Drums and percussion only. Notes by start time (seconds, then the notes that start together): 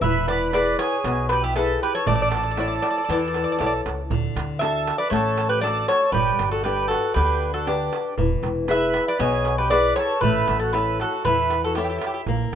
0.02 darbuka dum
0.28 darbuka tek
0.53 darbuka tek
0.67 darbuka tek
0.79 darbuka tek
0.93 darbuka tek
1.05 darbuka tek
1.29 darbuka tek
1.43 darbuka tek
1.56 darbuka tek
2.06 darbuka dum
2.32 darbuka tek
2.44 darbuka tek
2.57 darbuka tek
2.70 darbuka tek
2.83 darbuka tek
2.97 darbuka tek
3.10 darbuka tek
3.23 darbuka tek
3.34 darbuka tek
3.48 darbuka tek
3.61 darbuka tek
3.86 darbuka tek
3.99 darbuka tek
4.11 darbuka dum
4.37 darbuka tek
4.61 darbuka tek
4.87 darbuka tek
5.13 darbuka tek
5.38 darbuka tek
5.64 darbuka tek
5.88 darbuka tek
6.02 darbuka tek
6.14 darbuka dum
6.39 darbuka tek
6.65 darbuka tek
6.91 darbuka tek
7.17 darbuka tek
7.67 darbuka tek
7.93 darbuka tek
8.05 darbuka tek
8.18 darbuka dum
8.43 darbuka tek
8.68 darbuka tek
8.94 darbuka tek
9.19 darbuka tek
9.45 darbuka tek
9.71 darbuka tek
9.96 darbuka tek
10.22 darbuka dum
10.35 darbuka tek
10.48 darbuka tek
10.61 darbuka tek
10.74 darbuka tek
10.87 darbuka tek
11.00 darbuka tek
11.12 darbuka tek
11.25 darbuka tek, darbuka dum
11.50 darbuka tek
11.63 darbuka tek
11.75 darbuka tek
11.89 darbuka tek
12.01 darbuka tek
12.27 darbuka dum